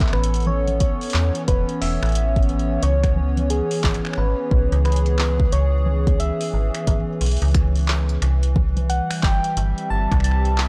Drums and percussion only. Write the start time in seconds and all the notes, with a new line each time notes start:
0.00 kick, clap, closed hi-hat
0.07 clap
0.13 finger snap
0.24 closed hi-hat
0.34 closed hi-hat
0.35 closed hi-hat
0.40 closed hi-hat
0.42 closed hi-hat
0.45 closed hi-hat, low conga
0.68 closed hi-hat, low conga
0.80 kick, closed hi-hat
1.01 open hi-hat
1.03 open hi-hat
1.10 open hi-hat
1.14 finger snap, clap
1.35 closed hi-hat
1.48 kick, closed hi-hat
1.69 closed hi-hat
1.82 open hi-hat
2.03 finger snap, closed hi-hat
2.06 closed hi-hat
2.09 closed hi-hat
2.12 closed hi-hat
2.15 closed hi-hat
2.36 kick, closed hi-hat
2.43 closed hi-hat
2.49 closed hi-hat
2.59 closed hi-hat
2.83 closed hi-hat
3.04 finger snap, kick, closed hi-hat
3.16 low conga
3.37 closed hi-hat, low conga
3.50 closed hi-hat
3.71 open hi-hat
3.84 finger snap, kick, clap
3.91 finger snap, closed hi-hat
3.95 finger snap
4.05 finger snap
4.06 finger snap
4.13 finger snap
4.51 kick
4.72 closed hi-hat
4.85 finger snap, closed hi-hat
4.92 closed hi-hat
4.96 closed hi-hat
5.06 closed hi-hat
5.19 clap
5.40 kick
5.52 closed hi-hat
5.86 low conga
6.07 kick, closed hi-hat, low conga
6.20 closed hi-hat
6.41 open hi-hat
6.74 finger snap, closed hi-hat
6.87 kick, closed hi-hat
7.21 closed hi-hat, open hi-hat
7.26 open hi-hat
7.31 open hi-hat
7.37 open hi-hat
7.42 closed hi-hat, open hi-hat
7.48 open hi-hat
7.51 finger snap, kick, closed hi-hat, open hi-hat
7.75 closed hi-hat
7.77 closed hi-hat
7.79 closed hi-hat
7.83 closed hi-hat
7.85 closed hi-hat
7.86 clap, closed hi-hat
8.09 closed hi-hat
8.22 finger snap, closed hi-hat
8.43 closed hi-hat
8.56 kick, low conga
8.77 closed hi-hat, low conga
8.90 closed hi-hat
9.11 finger snap, open hi-hat
9.23 kick, clap
9.44 closed hi-hat
9.57 closed hi-hat
9.78 closed hi-hat
10.12 finger snap, kick, closed hi-hat
10.20 finger snap
10.24 closed hi-hat
10.31 finger snap
10.45 closed hi-hat
10.58 clap